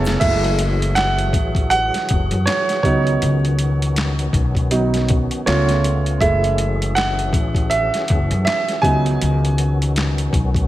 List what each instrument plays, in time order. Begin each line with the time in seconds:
Already playing: upright bass F1, grand piano C#3 F#3 B3 E4 A4 C#5 G#5 A5, tonewheel organ F#3 A3 B3 E4
0.05 snare, closed hi-hat, shaker
0.20 upright bass F#1, tonewheel organ E3 F#3 F#4 G#4, grand piano G#3 A3 E4 E5, kick, closed hi-hat, crash
0.44 closed hi-hat
0.59 closed hi-hat
0.82 closed hi-hat
0.95 grand piano F#5, snare, clap, closed hi-hat
1.19 closed hi-hat
1.33 upright bass A1, kick, closed hi-hat
1.55 kick, closed hi-hat
1.70 grand piano F#5, closed hi-hat
1.94 snare, closed hi-hat
2.09 upright bass F#1, kick, closed hi-hat
2.31 upright bass F#2, closed hi-hat
2.46 grand piano C#5, snare, clap, closed hi-hat
2.69 snare, closed hi-hat
2.83 upright bass C#2, tonewheel organ D#3 B3 C#4, grand piano F#3 B3 D#4 C#5, kick, closed hi-hat
3.07 closed hi-hat
3.22 upright bass C#2, closed hi-hat
3.45 closed hi-hat
3.59 closed hi-hat
3.82 closed hi-hat
3.96 snare, clap, closed hi-hat
4.19 closed hi-hat
4.33 upright bass B1, kick, closed hi-hat
4.55 kick, closed hi-hat
4.71 grand piano F#3 B3 D#4, closed hi-hat
4.94 snare, closed hi-hat
5.09 kick, closed hi-hat
5.31 closed hi-hat
5.46 upright bass C#2, tonewheel organ C#3 C#4 F4, grand piano A3 B3 F4 C#5, snare, clap, closed hi-hat
5.69 snare, closed hi-hat
5.84 closed hi-hat
6.06 closed hi-hat
6.20 upright bass F#1, tonewheel organ E3 F#4 G#4, grand piano G#3 A3 E4 E5, kick, closed hi-hat
6.44 closed hi-hat
6.58 closed hi-hat
6.82 closed hi-hat
6.95 grand piano F#5, snare, clap, closed hi-hat
7.19 closed hi-hat
7.33 upright bass A1, kick, closed hi-hat
7.55 kick, closed hi-hat
7.70 grand piano E5, closed hi-hat
7.94 snare, closed hi-hat
8.08 upright bass F#1, kick, closed hi-hat
8.31 upright bass F#2, closed hi-hat
8.45 grand piano E5, snare, clap, closed hi-hat
8.68 snare, closed hi-hat
8.82 upright bass C#2, tonewheel organ D#3 B3 C#4, grand piano F#3 B3 D#4 G#5, kick, closed hi-hat
9.06 closed hi-hat
9.21 upright bass C#2, closed hi-hat
9.45 closed hi-hat
9.58 closed hi-hat
9.82 closed hi-hat
9.96 snare, clap, closed hi-hat
10.18 closed hi-hat
10.33 upright bass B1, kick, closed hi-hat
10.55 kick, closed hi-hat